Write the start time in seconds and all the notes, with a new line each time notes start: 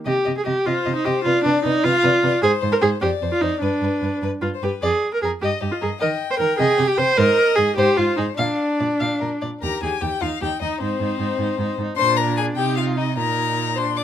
0.06 C3 G4 D#5
0.25 C3 D#5
0.38 G#4
0.45 C3 G4 D#5
0.66 C3 F4 C5 D#5
0.85 C3 D#5
0.95 D#4
1.05 C3 G4 D#5
1.24 C3 F4 B4 D5
1.44 C3 D4 B4
1.64 C3 D#4 B4
1.83 C3 F4 B4 F5
2.03 C3 B4 D5
2.23 C3 B4 D5
2.43 G#2 G#4 C5
2.61 G#2 C5
2.72 A#4
2.81 G#2 G#4 C5
3.01 F2 G4 C5 D5
3.22 F2 C5
3.32 F4
3.41 F2 D#4 C5
3.61 G2 D4 B4
3.82 G2 B4
4.02 G2 B4
4.22 G2 B4
4.42 G2 F4 B4
4.54 C5
4.62 G2 G4 B4
4.82 F2 G#4 D5
5.14 A#4
5.22 F2 G#4 A#4
5.42 G2 G4 D#5
5.62 G2 G4
5.71 F4
5.81 G2 G#4 A#4
6.00 D#3 A#4 D#5 G5
6.31 C5
6.39 D#3 A#4
6.58 C3 G#4 D#5
6.78 C3 G4
6.88 G4
6.98 C3 C5
7.17 G#2 A#4 C5 D#5
7.56 G#2 G#4
7.76 G#2 G4 C5
7.97 G#2 F4
8.17 G#2 D#4 G#4
8.38 A#2 D4 D5 F5
8.79 A#2 D5
8.99 A#2 F5
9.21 A#2 A#4
9.42 A#2 D5
9.61 D#2 G4 A#4 A#5
9.82 D#2 G4 G#4 G#5
10.01 D#2 G4 G5
10.21 D#2 D#4 F4 F5
10.41 D#2 D#4 G4 G5
10.61 D#2 D#4 D#5
10.80 G#2 C4 D#4 C5
11.00 G#2 D#4
11.19 G#2 D#4
11.39 G#2 D#4
11.58 G#2 D#4
11.79 G#2 D#4
11.97 A#2 D4 C5 C6
12.17 A#4 A#5
12.37 G#4 G#5
12.56 C3 D#4 G4 G5
12.76 F4 F5
12.97 D#4 D#5
13.17 A#2 D#4 A#4 A#5
13.76 D4 C5 C6
13.97 D5 D6